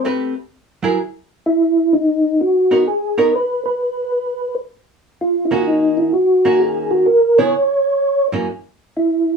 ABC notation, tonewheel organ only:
X:1
M:4/4
L:1/16
Q:"Swing" 1/4=128
K:Ador
V:1 name="Tonewheel organ"
z12 E4 | [K:B] D4 F4 G2 A2 B2 B2- | B6 z6 ^E3/2 =E/2 ^E2 | D2 E2 F4 G2 F2 A2 c2- |
c6 z6 E3- E/2 z/2 |]